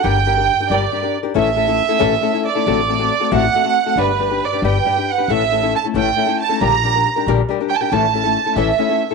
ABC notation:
X:1
M:6/8
L:1/16
Q:3/8=92
K:Glyd
V:1 name="Violin section"
g6 d4 z2 | e8- e2 d2- | d6 f6 | B4 d2 g4 f2 |
e4 a2 g4 a2 | _b6 z4 g/2 a/2 g | a6 e4- e3/2 z/2 |]
V:2 name="Nylon-string guitar"
[G,DG_B] z [G,DGB] [DGB] z [DGB] [G,DGB] z [G,DGB] [DGB] z [DGB] | [A,,E,A,CEA] z [A,CEA] [A,CEA] z [A,CEA] [A,,E,A,CEA] z [A,CEA] [A,CEA] z [A,CEA] | [A,,D,A,=CFA] z [A,CFA] [A,CFA] z [A,CFA] [A,,D,A,CFA] z [A,CFA] [A,CFA] z [A,CFA] | [G,DGB] z [G,DGB] [DGB] z [DGB] [G,DGB] z [G,DGB] [DGB] z [DGB] |
[A,,E,A,CEA] z [A,CEA] [A,CEA] z [A,CEA] [A,,E,A,CEA] z [A,CEA] [A,CEA] z [A,CEA] | [_B,,D,G,DG_B] z [G,DGB] [G,DGB] z [G,DGB] [B,,D,G,DGB] z [G,DGB] [G,DGB] z [G,DGB] | [A,,E,A,CEA] z [A,CEA] [A,CEA] z [A,CEA] [A,,E,A,CEA] z [A,CEA] [A,CEA] z A |]
V:3 name="Upright bass" clef=bass
G,,,6 G,,,2 z4 | A,,,6 A,,,2 z4 | A,,,6 A,,,2 z4 | G,,,6 G,,,2 z4 |
A,,,6 A,,,2 z4 | _B,,,6 B,,,2 z4 | A,,,6 A,,,2 z4 |]